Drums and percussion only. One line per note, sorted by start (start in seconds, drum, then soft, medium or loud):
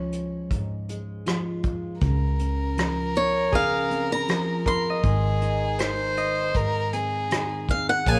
0.12 closed hi-hat soft
0.51 kick medium
0.51 closed hi-hat medium
0.89 closed hi-hat soft
1.26 cross-stick medium
1.26 closed hi-hat medium
1.63 kick medium
1.63 closed hi-hat soft
2.01 kick medium
2.01 closed hi-hat medium
2.39 closed hi-hat soft
2.78 cross-stick medium
2.78 closed hi-hat medium
3.15 closed hi-hat soft
3.53 kick medium
3.53 closed hi-hat medium
3.91 closed hi-hat soft
4.28 cross-stick medium
4.28 closed hi-hat medium
4.66 kick medium
4.66 closed hi-hat soft
5.04 kick medium
5.04 closed hi-hat medium
5.42 closed hi-hat soft
5.79 cross-stick medium
5.79 closed hi-hat medium
6.17 closed hi-hat soft
6.54 kick medium
6.54 closed hi-hat medium
6.93 closed hi-hat soft
7.31 cross-stick medium
7.31 closed hi-hat medium
7.69 kick medium
7.69 closed hi-hat medium
8.06 kick medium
8.06 ride medium